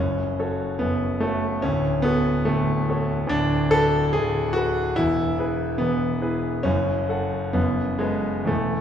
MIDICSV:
0, 0, Header, 1, 2, 480
1, 0, Start_track
1, 0, Tempo, 837989
1, 930, Time_signature, 2, 2, 24, 8
1, 3816, Tempo, 924499
1, 4931, End_track
2, 0, Start_track
2, 0, Title_t, "Grand piano"
2, 0, Program_c, 0, 0
2, 0, Note_on_c, 0, 30, 51
2, 0, Note_on_c, 0, 42, 53
2, 0, Note_on_c, 0, 61, 83
2, 88, Control_c, 0, 64, 127
2, 214, Note_off_c, 0, 30, 0
2, 215, Note_off_c, 0, 42, 0
2, 226, Note_on_c, 0, 66, 41
2, 226, Note_on_c, 0, 73, 51
2, 228, Note_on_c, 0, 69, 43
2, 439, Note_off_c, 0, 66, 0
2, 439, Note_off_c, 0, 73, 0
2, 440, Note_off_c, 0, 69, 0
2, 452, Note_on_c, 0, 59, 72
2, 456, Note_off_c, 0, 61, 0
2, 463, Note_on_c, 0, 42, 47
2, 465, Note_on_c, 0, 30, 49
2, 689, Note_off_c, 0, 42, 0
2, 690, Note_off_c, 0, 30, 0
2, 690, Note_off_c, 0, 59, 0
2, 690, Note_on_c, 0, 57, 74
2, 702, Note_on_c, 0, 66, 40
2, 702, Note_on_c, 0, 69, 44
2, 704, Note_on_c, 0, 73, 45
2, 910, Note_off_c, 0, 69, 0
2, 911, Note_off_c, 0, 66, 0
2, 912, Note_off_c, 0, 73, 0
2, 927, Note_off_c, 0, 57, 0
2, 930, Note_on_c, 0, 61, 95
2, 938, Note_on_c, 0, 38, 58
2, 940, Control_c, 0, 64, 0
2, 941, Note_on_c, 0, 26, 54
2, 1042, Control_c, 0, 64, 127
2, 1159, Note_on_c, 0, 59, 97
2, 1166, Note_off_c, 0, 38, 0
2, 1168, Note_off_c, 0, 26, 0
2, 1169, Note_off_c, 0, 61, 0
2, 1171, Note_on_c, 0, 69, 47
2, 1172, Note_on_c, 0, 73, 48
2, 1174, Note_on_c, 0, 66, 48
2, 1390, Note_off_c, 0, 69, 0
2, 1391, Note_off_c, 0, 73, 0
2, 1392, Note_off_c, 0, 66, 0
2, 1404, Note_on_c, 0, 57, 80
2, 1407, Note_off_c, 0, 59, 0
2, 1416, Note_on_c, 0, 26, 56
2, 1416, Note_on_c, 0, 38, 50
2, 1651, Note_off_c, 0, 26, 0
2, 1651, Note_off_c, 0, 38, 0
2, 1655, Note_on_c, 0, 66, 43
2, 1659, Note_on_c, 0, 69, 45
2, 1663, Note_on_c, 0, 73, 50
2, 1873, Note_on_c, 0, 38, 66
2, 1874, Note_off_c, 0, 66, 0
2, 1876, Note_off_c, 0, 69, 0
2, 1878, Note_off_c, 0, 73, 0
2, 1887, Note_on_c, 0, 62, 102
2, 1894, Note_off_c, 0, 57, 0
2, 1899, Note_on_c, 0, 26, 58
2, 1909, Control_c, 0, 64, 0
2, 2003, Control_c, 0, 64, 127
2, 2116, Note_off_c, 0, 38, 0
2, 2124, Note_on_c, 0, 69, 109
2, 2130, Note_off_c, 0, 26, 0
2, 2131, Note_off_c, 0, 62, 0
2, 2136, Note_on_c, 0, 66, 49
2, 2139, Note_on_c, 0, 71, 56
2, 2352, Note_off_c, 0, 66, 0
2, 2353, Note_off_c, 0, 71, 0
2, 2365, Note_on_c, 0, 68, 92
2, 2369, Note_off_c, 0, 69, 0
2, 2376, Note_on_c, 0, 26, 49
2, 2379, Note_on_c, 0, 38, 55
2, 2594, Note_on_c, 0, 66, 98
2, 2606, Note_off_c, 0, 26, 0
2, 2606, Note_on_c, 0, 69, 50
2, 2608, Note_off_c, 0, 38, 0
2, 2608, Note_off_c, 0, 68, 0
2, 2612, Note_on_c, 0, 71, 45
2, 2825, Note_off_c, 0, 69, 0
2, 2827, Note_off_c, 0, 71, 0
2, 2841, Note_on_c, 0, 64, 100
2, 2842, Note_off_c, 0, 66, 0
2, 2852, Note_on_c, 0, 28, 60
2, 2856, Note_on_c, 0, 40, 67
2, 2862, Control_c, 0, 64, 0
2, 2959, Control_c, 0, 64, 127
2, 3078, Note_off_c, 0, 64, 0
2, 3083, Note_off_c, 0, 28, 0
2, 3084, Note_off_c, 0, 40, 0
2, 3086, Note_on_c, 0, 64, 52
2, 3088, Note_on_c, 0, 68, 49
2, 3093, Note_on_c, 0, 71, 51
2, 3301, Note_off_c, 0, 64, 0
2, 3302, Note_off_c, 0, 68, 0
2, 3305, Note_off_c, 0, 71, 0
2, 3311, Note_on_c, 0, 59, 82
2, 3327, Note_on_c, 0, 28, 52
2, 3327, Note_on_c, 0, 40, 49
2, 3559, Note_off_c, 0, 28, 0
2, 3559, Note_off_c, 0, 40, 0
2, 3560, Note_on_c, 0, 64, 43
2, 3563, Note_on_c, 0, 71, 49
2, 3565, Note_on_c, 0, 68, 45
2, 3788, Note_off_c, 0, 64, 0
2, 3789, Note_off_c, 0, 71, 0
2, 3790, Note_off_c, 0, 68, 0
2, 3799, Note_on_c, 0, 61, 95
2, 3806, Note_off_c, 0, 59, 0
2, 3808, Note_on_c, 0, 42, 65
2, 3810, Note_on_c, 0, 30, 63
2, 3822, Control_c, 0, 64, 0
2, 3922, Control_c, 0, 64, 127
2, 4036, Note_off_c, 0, 42, 0
2, 4037, Note_off_c, 0, 30, 0
2, 4040, Note_on_c, 0, 69, 47
2, 4044, Note_on_c, 0, 78, 48
2, 4258, Note_off_c, 0, 69, 0
2, 4260, Note_off_c, 0, 78, 0
2, 4268, Note_on_c, 0, 59, 79
2, 4273, Note_on_c, 0, 42, 60
2, 4275, Note_off_c, 0, 61, 0
2, 4276, Note_on_c, 0, 30, 56
2, 4291, Control_c, 0, 64, 0
2, 4396, Control_c, 0, 64, 127
2, 4504, Note_on_c, 0, 56, 76
2, 4510, Note_off_c, 0, 42, 0
2, 4512, Note_off_c, 0, 30, 0
2, 4512, Note_on_c, 0, 69, 42
2, 4515, Note_off_c, 0, 59, 0
2, 4515, Note_on_c, 0, 75, 42
2, 4518, Note_on_c, 0, 71, 42
2, 4742, Note_off_c, 0, 69, 0
2, 4743, Note_off_c, 0, 75, 0
2, 4744, Note_on_c, 0, 40, 62
2, 4745, Note_off_c, 0, 71, 0
2, 4756, Note_on_c, 0, 57, 70
2, 4759, Note_off_c, 0, 56, 0
2, 4764, Note_on_c, 0, 28, 54
2, 4778, Control_c, 0, 64, 0
2, 4889, Control_c, 0, 64, 127
2, 4931, Note_off_c, 0, 28, 0
2, 4931, Note_off_c, 0, 40, 0
2, 4931, Note_off_c, 0, 57, 0
2, 4931, End_track
0, 0, End_of_file